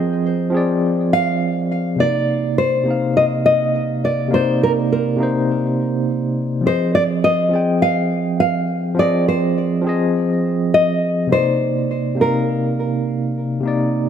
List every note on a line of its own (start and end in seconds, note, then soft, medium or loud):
0.00 0.50 F3 medium
0.00 0.52 C4 medium
0.00 0.55 G#4 medium
0.00 0.79 C5 medium
0.00 0.52 D#5 loud
0.00 2.01 G5 medium
0.50 1.94 F3 medium
0.50 1.95 C4 medium
0.55 1.97 G#4 medium
0.55 1.98 D5 loud
1.13 2.00 F5 loud
1.96 2.82 C3 medium
1.96 2.83 A#3 medium
2.00 2.84 D#4 medium
2.00 2.54 D5 loud
2.00 2.85 D5 medium
2.58 3.12 C5 loud
2.84 4.27 C3 medium
2.84 4.29 A#3 medium
2.88 4.30 D#4 medium
2.88 4.31 F5 medium
3.17 3.25 D#5 loud
3.46 4.04 D#5 loud
4.05 4.34 D5 medium
4.28 5.15 C3 medium
4.28 5.16 A#3 medium
4.33 5.17 D#4 medium
4.33 4.60 C5 medium
4.33 5.18 D5 loud
4.63 4.71 A#4 medium
4.92 6.04 A#4 medium
5.16 6.60 C3 medium
5.16 6.62 A#3 medium
5.20 6.63 D#4 medium
5.20 6.64 C5 loud
6.61 7.47 F3 medium
6.61 7.49 C4 medium
6.66 7.50 G#4 medium
6.66 6.94 C5 loud
6.66 7.51 D#5 medium
6.95 7.03 D5 loud
7.24 7.78 D#5 loud
7.49 8.93 F3 medium
7.49 8.94 C4 medium
7.54 8.96 G#4 medium
7.54 8.97 G5 medium
7.82 8.39 F5 loud
8.40 8.99 F5 loud
8.95 9.80 F3 medium
8.95 9.82 C4 medium
8.99 9.83 G#4 medium
8.99 9.28 D5 loud
8.99 9.84 D#5 loud
9.28 10.74 C5 loud
9.82 11.26 F3 medium
9.82 11.28 C4 medium
9.87 11.29 G#4 medium
9.87 11.30 D#5 loud
10.74 11.32 D#5 loud
11.27 12.13 C3 medium
11.27 12.15 A#3 medium
11.31 12.16 D#4 medium
11.31 12.21 C5 loud
11.31 12.17 D5 medium
12.15 13.59 C3 medium
12.15 13.60 A#3 medium
12.20 13.62 D#4 medium
12.20 14.09 A#4 medium
12.20 13.63 F5 medium
13.61 14.09 C3 medium
13.61 14.09 A#3 medium
13.65 14.09 D#4 medium
13.65 14.09 D5 loud